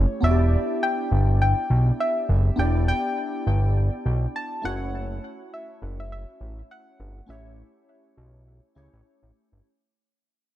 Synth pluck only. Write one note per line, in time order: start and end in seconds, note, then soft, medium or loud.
0.00 0.26 C#5 medium
0.24 0.84 E5 loud
0.83 1.37 G5 loud
1.42 2.02 G5 loud
2.00 2.55 E5 loud
2.59 2.86 G5 loud
2.88 4.40 G5 loud
4.36 4.66 A5 loud
4.65 5.56 F#5 loud
5.54 5.96 E5 medium
6.00 6.11 E5 medium
6.12 6.72 E5 medium
6.71 7.31 F#5 medium
7.30 9.02 E5 medium